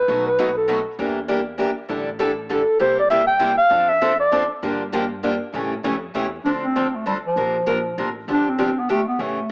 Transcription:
Already playing: B4
0.08 B1 B2 F#3 A3 D#4 F#4 B4
0.27 B4
0.38 B2 F#3 A3 D#4 F#4 B4
0.57 A4
0.68 B2 F#3 A3 D#4 F#4 B4
0.99 E2 E3 G3 A#3 D4 E4 G4 A#4
1.28 E3 G3 A#3 D4 E4 G4 A#4
1.58 E3 G3 A#3 D4 E4 G4 A#4
1.89 A1 D3 G3 D4 E4 A4
2.19 D3 G3 D4 E4 A4
2.50 D3 G3 D4 E4 A4
2.79 C2 C3 G3 A#3 E4 G4 C5
2.99 D5
3.10 C3 G3 A#3 E4 G4 E5
3.27 G5
3.39 C3 G3 A#3 E4 G4
3.58 F5
3.70 F2 F3 C4 D4 A4
3.89 E5
4.01 F3 C4 D4 A4
4.20 D5
4.31 F3 C4 D4 A4
4.62 G2 D3 F3 A#3 D4 G4
4.93 D3 F3 A#3 D4 G4
5.23 D3 F3 A#3 D4 G4
5.54 A2 C#3 E3 G3 A3 C#4 E4 G4 A4
5.84 F2 C#3 E3 G3 A3 C#4 E4 G4 A4
6.14 E2 C#3 E3 G3 A3 C#4 E4 G4 A4
6.45 D2 D3 F3 C4 D4 A4
6.63 C4
6.75 D3 F3 C4 D4 A4
6.95 A3
7.06 D3 F3 G3 C4 D4 A4
7.27 F3
7.36 A#1 C3 F3 A#3 D4 A#4
7.66 A#1 C3 F3 A#3 D4 A#4
7.98 A1 C3 F3 A#3 D4 A#4
8.28 G1 D3 F3 B3 D4 G4
8.49 C4
8.58 D3 F3 B3 D4 G4
8.80 B3
8.89 D3 F3 A3 B3 D4 G4
9.08 B3
9.19 A1 C#3 E3 A3 C#4 G4

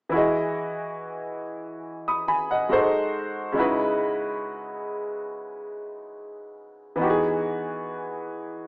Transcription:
0.09 E3 E4 F#4
0.15 G#4 D#5
2.08 B5 D#6
2.28 G#5 B5
2.51 D#5 F#5
2.69 G#3 D#4 F#4 A4 C5
3.52 C#3 G#3 D#4
3.57 E4 F#4 B4
6.96 E3 B3 D#4
7.01 F#4 G4
7.10 G#4

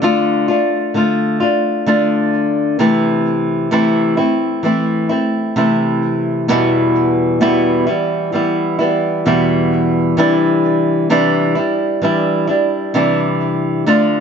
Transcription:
0.02 D3 A3 D4 F4
0.48 A3 D4 F4
0.94 D3 A3 D4 F4
1.40 A3 D4 F4
1.86 D3 A3 D4 F4
2.79 C3 E3 A3 C4 E4
3.71 C3 E3 A3 C4 E4
4.17 A3 C4 E4
4.63 E3 A3 C4 E4
5.09 A3 C4 E4
5.56 C3 E3 A3 C4 E4
6.48 E2 B2 E3 G3 B3 E4
7.41 E2 B2 E3 G3 B3 E4
7.87 E3 G3 B3 E4
8.32 E3 G3 B3 E4
8.79 E3 G3 B3 E4
9.25 E2 B2 E3 G3 B3 E4
10.17 C3 E3 G3 D4 E4
11.10 C3 E3 G3 D4 E4
11.55 G3 D4 E4
12.02 E3 G3 D4 E4
12.47 G3 D4 E4
12.94 C3 E3 G3 D4 E4
13.86 D3 A3 D4 F4

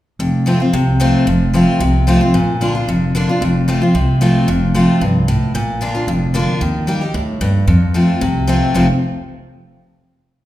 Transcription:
0.19 F1 F2
0.46 F3 A3 C4 F4
0.60 C4 F4
0.73 C2 C3
1.00 F3 A3 C4 F4
1.27 F1 F2
1.54 F3 A3 C4 F4
1.80 C2 C3
2.07 F3 A3 C4 F4
2.21 C4 F4
2.34 A#1 A#2
2.61 D3 A#3 D4 F4
2.75 D4 F4
2.88 F1 F2
3.15 D3 A#3 D4 F4
3.29 D4 F4
3.41 F1 F2
3.68 F3 A3 C4 F4
3.82 C4 F4
3.94 C2 C3
4.21 F3 A3 C4 F4
4.47 F1 F2
4.74 F3 A3 C4 F4
5.01 C2 G2
5.28 A2
5.54 A#1 A#2
5.81 D3 A#3 D4 F4
5.95 D4 F4
6.07 F1 F2
6.34 D3 A#3 D4 F4
6.61 D#2 D#3
6.87 G3 A#3 D#4 G4
7.01 D#4 G4
7.14 D2 A2
7.41 D#2 G2
7.67 F2
7.94 F3 A3 C4 F4
8.21 C2 C3
8.47 F3 A3 C4 F4
8.74 F1 F2 C3 F3 A3 C4 F4

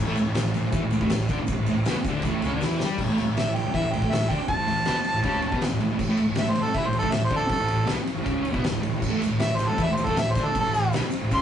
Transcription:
0.06 A1 A2 A3
0.16 muted distorted electric guitar stroke, muted picked electric bass stroke, ride, shaker
0.26 A1 A2
0.35 A1 A2, snare, ride, shaker
0.45 A1 A2
0.54 A1 A2, ride, shaker
0.65 muted picked electric bass stroke, muted distorted electric guitar stroke
0.72 E2 E3 E4, kick, ride, shaker
0.82 A1 A2
0.90 A1 A2, ride, shaker
1.01 A1 A2 A3, kick
1.09 A1 A2, snare, ride, shaker
1.20 A1 A2
1.28 D2 D3 D4, kick, ride, shaker
1.40 muted picked electric bass stroke, muted distorted electric guitar stroke
1.47 muted picked electric bass stroke, muted distorted electric guitar stroke, kick, ride, shaker
1.58 A1 A2
1.66 A1 A2, ride, shaker
1.85 B1 B2 B3, snare, ride, shaker
1.97 muted distorted electric guitar stroke, muted picked electric bass stroke
2.04 D2, kick, ride, shaker
2.09 D3 D4
2.22 A1 A2, kick, ride, shaker
2.26 A3
2.42 C#2 C#3 C#4, ride, shaker
2.53 D2 D3 D4
2.61 E2 E3, snare, shaker
2.66 E4
2.80 G2 G3 G4, snare, shaker
2.98 A1 A2, kick, crash
3.09 A1 A2 A3
3.18 muted picked electric bass stroke, muted distorted electric guitar stroke, snare, ride
3.29 A1 A2
3.37 A1 A2 E5, snare, ride
3.46 A1 A2
3.55 A1 A2 G5, ride
3.66 muted distorted electric guitar stroke, muted picked electric bass stroke
3.74 E2 E3 E4 E5, kick, ride
3.84 A1 A2
3.92 A1 A2 G5, ride
4.02 A1 A2 A3, kick
4.11 A1 A2 E5, snare, ride
4.22 A1 A2
4.30 D2 D3 D4 G5, kick, ride
4.40 muted distorted electric guitar stroke, muted picked electric bass stroke
4.48 A5, muted picked electric bass stroke, muted distorted electric guitar stroke, kick, ride
4.58 A1 A2
4.67 A1 A2, snare, ride
4.85 B1 B2 B3, snare, ride
4.96 muted distorted electric guitar stroke, muted picked electric bass stroke
5.05 ride
5.14 A1 A2
5.23 C#2 C#3 C#4, kick, ride
5.42 muted distorted electric guitar stroke, muted picked electric bass stroke, ride
5.52 B1 B2 B3, kick
5.61 muted distorted electric guitar stroke, muted picked electric bass stroke, snare, ride
5.70 A1 A2
5.79 A1 A2, ride
5.89 A1 A2
5.99 A1 A2, kick, crash
6.07 A1 A2 A3
6.16 muted picked electric bass stroke, muted distorted electric guitar stroke, ride
6.26 A1 A2
6.35 A1 A2 E5, snare, ride
6.44 A1 A2
6.50 A1 C5
6.55 A2, ride
6.63 A4, muted picked electric bass stroke, muted distorted electric guitar stroke
6.75 E2 E3 E4 E5, kick, ride
6.83 A1 A2 C5
6.93 A1 A2, ride
6.99 A2 A4, kick
7.03 A1 A3
7.12 A1 A2 E5, snare, ride
7.21 A1 A2 C5
7.30 D2 D3 D4, kick, ride
7.36 A4, muted distorted electric guitar stroke
7.41 muted picked electric bass stroke
7.49 A4, muted distorted electric guitar stroke, muted picked electric bass stroke, kick, ride
7.59 A1 A2
7.68 A1 A2, ride
7.86 B1 B2 B3, snare, ride
7.96 muted distorted electric guitar stroke, muted picked electric bass stroke
8.07 ride
8.15 A1 A2
8.23 C#2 C#3 C#4, kick, ride
8.43 muted distorted electric guitar stroke, muted picked electric bass stroke, ride
8.52 B1 B2 B3, kick
8.60 muted distorted electric guitar stroke, ride
8.65 muted picked electric bass stroke, snare
8.69 A2
8.75 A1
8.80 A2, ride
8.85 A1 A2
8.94 A1
8.98 A1 A2, kick, crash
9.03 shaker
9.09 A2 A3
9.14 A1
9.20 muted distorted electric guitar stroke, snare, ride, shaker
9.24 A2, muted picked electric bass stroke
9.33 A1
9.39 A1 A2 E5, snare, ride, shaker
9.49 A1 A2
9.56 A2 C5, shaker
9.60 A1, ride
9.68 A4, muted distorted electric guitar stroke
9.72 muted picked electric bass stroke
9.78 E2 E3 E4, kick, ride, shaker
9.83 E5
9.88 A1 A2
9.95 C5, ride, shaker
10.00 A1 A2
10.06 A1 A2 A4, kick, shaker
10.10 A3
10.17 A1 A2 E5, snare, ride, shaker
10.27 A1 A2
10.32 C5, kick, ride, shaker
10.37 D2 D3 D4
10.45 A4, muted distorted electric guitar stroke, muted picked electric bass stroke
10.55 A4, muted picked electric bass stroke, muted distorted electric guitar stroke, kick, ride, shaker
10.66 A1 A2
10.74 A1 A2, snare, ride, shaker
10.92 B1 B2 B3, snare, ride, shaker
11.04 muted picked electric bass stroke, muted distorted electric guitar stroke
11.10 ride, shaker
11.21 A1 A2
11.31 C#2 C#3 C#4 C6, kick, ride, shaker

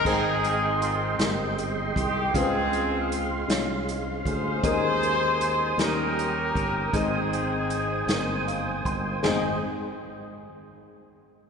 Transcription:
0.05 G#1 G#2 G#3 C4 D#4 G#4 C5 D#5 G5 C6, kick, crash
0.44 closed hi-hat
0.81 C4 F4, closed hi-hat
1.19 G1 G#3 D#4 G4 A#4, snare, closed hi-hat
1.58 closed hi-hat
1.96 C2 G4, kick, closed hi-hat
2.33 C#2 C#3 G#3 C4 F4 G#4 B4 F5, kick, closed hi-hat
2.41 C5
2.73 closed hi-hat
3.12 closed hi-hat
3.48 C2 G#3 C#4 D#4 C#5, snare, closed hi-hat
3.55 F4
3.89 closed hi-hat
4.25 D2 G#4 C5, kick, closed hi-hat
4.62 D#2 D#3 G#3 C#4 D#4 A#4 G#5 D#6, kick, closed hi-hat
5.03 closed hi-hat
5.41 closed hi-hat
5.77 D#2 D#3 G3 C#4 D#4 G4 A4 A#4 G5 D#6, snare, closed hi-hat
5.85 A#4
6.19 closed hi-hat
6.55 G1, kick, closed hi-hat
6.93 G#1 G#2 G#3 C4 D#4 G#4 C5 G#5, kick, closed hi-hat
6.97 G#4
7.33 closed hi-hat
7.70 closed hi-hat
8.07 G1 G#3 A#3 D#4 A#4, snare, closed hi-hat
8.15 C4
8.47 F5, closed hi-hat
8.66 G#5
8.85 G1 C6, kick, closed hi-hat
9.22 G#1 G#3 C4 D#4 G#4 C5 D#5 G5, snare, floor tom, crash

